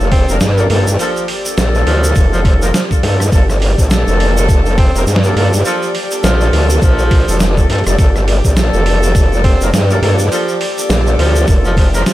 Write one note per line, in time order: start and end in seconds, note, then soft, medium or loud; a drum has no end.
0.00 0.26 F1 loud
0.00 0.25 A#3 medium
0.00 0.25 D4 medium
0.00 0.25 F4 medium
0.00 12.13 G4 medium
0.00 0.25 A4 medium
0.00 12.13 D5 medium
0.00 impact medium
0.00 shaker soft
0.12 0.38 C4 medium
0.12 kick loud
0.12 open hi-hat medium
0.29 0.39 F1 loud
0.29 0.37 A#3 medium
0.29 0.37 D4 medium
0.29 0.37 F4 medium
0.29 0.37 A#4 loud
0.29 open hi-hat soft
0.29 shaker medium
0.40 0.68 G2 loud
0.40 snare loud
0.40 open hi-hat soft
0.40 shaker medium
0.58 0.66 A#3 medium
0.58 0.66 D4 medium
0.58 0.66 F4 medium
0.58 0.66 A4 medium
0.58 open hi-hat soft
0.58 shaker soft
0.70 0.97 G2 loud
0.70 0.81 A#3 medium
0.70 0.88 A#3 medium
0.70 0.88 D4 medium
0.70 0.88 F4 medium
0.70 0.88 A4 medium
0.70 open hi-hat medium
0.87 open hi-hat soft
0.87 shaker medium
0.99 1.26 F3 medium
0.99 1.11 A#3 medium
0.99 1.11 D4 medium
0.99 1.11 F4 medium
0.99 1.11 A4 loud
0.99 open hi-hat soft
0.99 shaker medium
1.16 open hi-hat soft
1.16 shaker soft
1.28 open hi-hat medium
1.45 2.58 A#3 medium
1.45 2.58 D4 medium
1.45 2.58 F4 medium
1.45 2.58 A4 medium
1.45 open hi-hat soft
1.45 shaker medium
1.58 1.85 A#1 medium
1.58 snare loud
1.58 open hi-hat soft
1.58 shaker medium
1.75 open hi-hat soft
1.75 shaker soft
1.87 2.14 D2 loud
1.87 2.13 F3 medium
1.87 open hi-hat medium
2.04 open hi-hat soft
2.04 shaker medium
2.15 2.72 F1 loud
2.15 kick loud
2.15 open hi-hat soft
2.15 shaker medium
2.33 2.41 F3 medium
2.33 open hi-hat soft
2.33 shaker soft
2.39 open hi-hat soft
2.45 2.56 F3 medium
2.45 kick loud
2.45 cross-stick soft
2.45 open hi-hat medium
2.54 open hi-hat soft
2.62 2.70 F3 medium
2.62 2.70 A#3 loud
2.62 2.70 D4 medium
2.62 2.70 F4 medium
2.62 2.70 A#4 loud
2.62 open hi-hat soft
2.62 shaker medium
2.74 2.85 F3 medium
2.74 snare loud
2.74 open hi-hat soft
2.74 shaker medium
2.91 2.99 A#3 medium
2.91 2.99 D4 medium
2.91 2.99 F4 medium
2.91 2.99 A4 medium
2.91 kick medium
2.91 open hi-hat soft
2.91 shaker soft
3.03 3.30 G2 loud
3.03 3.21 A#3 medium
3.03 3.21 D4 medium
3.03 3.21 F4 medium
3.03 3.21 A4 medium
3.03 open hi-hat medium
3.20 cross-stick medium
3.20 open hi-hat soft
3.20 shaker medium
3.32 3.76 G1 loud
3.32 3.44 A#3 medium
3.32 3.44 D4 medium
3.32 3.44 F4 medium
3.32 3.44 A4 loud
3.32 kick loud
3.32 open hi-hat soft
3.32 shaker medium
3.50 cross-stick soft
3.50 open hi-hat soft
3.50 shaker soft
3.52 open hi-hat soft
3.56 open hi-hat soft
3.58 open hi-hat soft
3.60 open hi-hat soft
3.62 open hi-hat medium
3.78 4.05 A#1 loud
3.78 4.91 A#3 medium
3.78 4.91 D4 medium
3.78 4.91 F4 medium
3.78 4.91 A4 medium
3.78 kick medium
3.78 open hi-hat soft
3.78 shaker medium
3.90 snare loud
3.90 open hi-hat soft
3.90 shaker medium
4.07 4.92 F1 loud
4.07 open hi-hat soft
4.07 shaker soft
4.20 open hi-hat medium
4.37 open hi-hat soft
4.37 shaker medium
4.49 kick loud
4.49 open hi-hat soft
4.49 shaker medium
4.66 open hi-hat soft
4.66 shaker soft
4.78 5.05 C4 medium
4.78 kick loud
4.78 open hi-hat medium
4.95 5.05 F1 loud
4.95 5.03 A#3 loud
4.95 5.03 D4 medium
4.95 5.03 F4 medium
4.95 5.03 A#4 loud
4.95 open hi-hat soft
4.95 shaker medium
5.07 5.34 G2 loud
5.07 open hi-hat soft
5.07 shaker medium
5.16 snare loud
5.24 5.32 A#3 medium
5.24 5.32 D4 medium
5.24 5.32 F4 medium
5.24 5.32 A4 medium
5.24 open hi-hat soft
5.24 shaker soft
5.36 5.63 G2 loud
5.36 5.54 A#3 medium
5.36 5.47 A#3 medium
5.36 5.54 D4 medium
5.36 5.54 F4 medium
5.36 5.54 A4 medium
5.36 open hi-hat medium
5.53 open hi-hat soft
5.53 shaker medium
5.65 5.92 F3 loud
5.65 5.77 A#3 medium
5.65 5.77 D4 medium
5.65 5.77 F4 medium
5.65 5.77 A4 loud
5.65 open hi-hat soft
5.65 shaker medium
5.83 open hi-hat soft
5.83 shaker soft
5.95 open hi-hat medium
6.11 7.24 A#3 medium
6.11 7.24 D4 medium
6.11 7.24 F4 medium
6.11 7.24 A4 medium
6.11 open hi-hat soft
6.11 shaker medium
6.24 6.51 A#1 medium
6.24 6.70 F3 medium
6.24 snare loud
6.24 open hi-hat soft
6.24 shaker medium
6.41 open hi-hat soft
6.41 shaker soft
6.53 6.80 D2 loud
6.53 open hi-hat medium
6.70 open hi-hat soft
6.70 shaker medium
6.82 7.25 A#1 loud
6.82 7.64 F3 loud
6.82 kick loud
6.82 open hi-hat soft
6.82 shaker medium
6.99 open hi-hat soft
6.99 shaker soft
7.11 kick loud
7.11 cross-stick soft
7.11 open hi-hat medium
7.28 7.67 F1 loud
7.28 7.36 A#3 medium
7.28 7.36 D4 medium
7.28 7.36 F4 medium
7.28 7.36 A4 medium
7.28 open hi-hat soft
7.28 shaker medium
7.40 snare loud
7.40 open hi-hat soft
7.40 shaker medium
7.57 7.68 A#3 medium
7.57 7.68 D4 medium
7.57 7.68 F4 medium
7.57 7.68 A4 medium
7.57 kick medium
7.57 open hi-hat soft
7.57 shaker soft
7.69 7.83 G2 loud
7.69 7.81 A#3 medium
7.69 7.81 D4 medium
7.69 7.81 F4 medium
7.69 7.81 A4 medium
7.69 open hi-hat medium
7.73 open hi-hat medium
7.75 open hi-hat soft
7.78 open hi-hat soft
7.84 7.96 F1 loud
7.84 7.96 A#3 medium
7.84 7.96 D4 medium
7.84 7.96 F4 medium
7.84 7.96 A4 medium
7.84 cross-stick medium
7.84 open hi-hat soft
7.84 shaker medium
7.87 open hi-hat soft
7.98 8.42 G1 loud
7.98 8.10 A#3 medium
7.98 8.10 D4 medium
7.98 8.10 F4 medium
7.98 8.10 A4 loud
7.98 kick loud
7.98 open hi-hat soft
7.98 shaker medium
8.16 cross-stick soft
8.16 open hi-hat soft
8.16 shaker soft
8.28 open hi-hat medium
8.45 8.71 A#1 loud
8.45 9.57 A#3 medium
8.45 9.57 D4 medium
8.45 9.57 F4 medium
8.45 9.57 A4 medium
8.45 kick medium
8.45 open hi-hat soft
8.45 shaker medium
8.56 snare loud
8.56 open hi-hat soft
8.56 shaker medium
8.74 9.58 F1 loud
8.74 open hi-hat soft
8.74 shaker soft
8.86 open hi-hat medium
9.03 open hi-hat soft
9.03 shaker medium
9.15 kick loud
9.15 open hi-hat soft
9.15 shaker medium
9.32 open hi-hat soft
9.32 shaker soft
9.44 9.70 C4 loud
9.44 kick loud
9.44 open hi-hat medium
9.61 9.71 F1 loud
9.61 9.69 A#3 loud
9.61 9.69 D4 medium
9.61 9.69 F4 medium
9.61 9.69 A#4 loud
9.61 open hi-hat soft
9.61 shaker medium
9.73 10.00 G2 medium
9.73 snare loud
9.73 open hi-hat soft
9.73 shaker medium
9.90 9.98 A#3 medium
9.90 9.98 D4 medium
9.90 9.98 F4 medium
9.90 9.98 A4 medium
9.90 open hi-hat soft
9.90 shaker soft
10.02 10.29 G2 loud
10.02 10.13 A#3 medium
10.02 10.20 A#3 medium
10.02 10.20 D4 medium
10.02 10.20 F4 medium
10.02 10.20 A4 medium
10.02 open hi-hat medium
10.19 open hi-hat soft
10.19 shaker medium
10.31 10.58 F3 medium
10.31 10.43 A#3 medium
10.31 10.43 D4 medium
10.31 10.43 F4 medium
10.31 10.43 A4 loud
10.31 open hi-hat soft
10.31 shaker medium
10.48 open hi-hat soft
10.48 shaker soft
10.61 open hi-hat medium
10.77 11.90 A#3 medium
10.77 11.90 D4 medium
10.77 11.90 F4 medium
10.77 11.90 A4 medium
10.77 open hi-hat soft
10.77 shaker medium
10.90 11.17 A#1 medium
10.90 snare loud
10.90 open hi-hat soft
10.90 shaker medium
11.07 open hi-hat soft
11.07 shaker soft
11.19 11.46 D2 loud
11.19 11.45 F3 loud
11.19 open hi-hat medium
11.36 open hi-hat soft
11.36 shaker medium
11.47 12.04 F1 loud
11.47 kick loud
11.47 open hi-hat soft
11.47 shaker medium
11.65 11.73 F3 medium
11.65 open hi-hat soft
11.65 shaker soft
11.77 11.88 F3 medium
11.77 kick loud
11.77 cross-stick soft
11.77 open hi-hat medium
11.83 cross-stick soft
11.87 cross-stick soft
11.94 12.02 F3 medium
11.94 12.02 A#3 loud
11.94 12.02 D4 medium
11.94 12.02 F4 medium
11.94 12.02 A#4 loud
11.94 cross-stick soft
11.94 open hi-hat soft
11.94 shaker medium
11.97 cross-stick soft
12.02 cross-stick soft
12.02 shaker medium
12.06 12.13 F3 medium
12.06 snare loud
12.06 open hi-hat soft